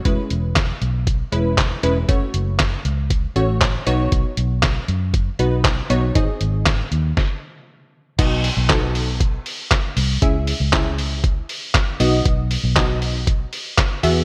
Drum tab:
CC |--------|--------|--------|--------|
HH |xxxxxxxx|xxxxxxxx|xxxxxxxx|xxxx----|
CP |--x---x-|--x---x-|--x---x-|--x-----|
SD |--o---o-|--o---o-|--o---o-|--o-o---|
BD |o-o-o-o-|o-o-o-o-|o-o-o-o-|o-o-o---|

CC |x-------|--------|--------|
HH |xoxoxoxo|xoxoxoxo|xoxoxoxo|
CP |--x---x-|--x---x-|--x---x-|
SD |--o---o-|--o---o-|--o---o-|
BD |o-o-o-o-|o-o-o-o-|o-o-o-o-|